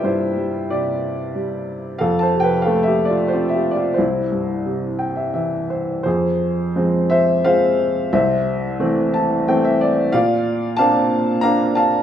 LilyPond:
<<
  \new Staff \with { instrumentName = "Upright piano" } { \time 3/4 \key c \major \tempo 4 = 90 << { <e' c''>4 <g' d''>4 r4 | \tuplet 3/2 { <a' f''>8 <c'' a''>8 <b' g''>8 <a' f''>8 <g' e''>8 <f' d''>8 <f' c''>8 <g' e''>8 <f' d''>8 } | <e' c''>2~ <e' c''>8 r8 | \key f \major <aes' c''>4. <c'' e''>8 <c'' f''>4 |
<c'' e''>2 r4 | <d'' f''>4 <f'' a''>4 <f'' bes''>8 <f'' a''>8 | } \\ { r2. | r2. | r4. g''16 e''16 e''8 c''8 | r2. |
r4. a''8 g''16 e''16 d''8 | r2. | } >> }
  \new Staff \with { instrumentName = "Upright piano" } { \clef bass \time 3/4 \key c \major <g, g>8 g8 c4 g4 | f,8 c8 a4 c'4 | c,8 g,8 c4 e4 | \key f \major f,4 <f aes c'>4 <f aes c'>4 |
c,4 <e a c'>4 <e a c'>4 | bes,4 <bes c' d'>4 <bes c' d'>4 | }
>>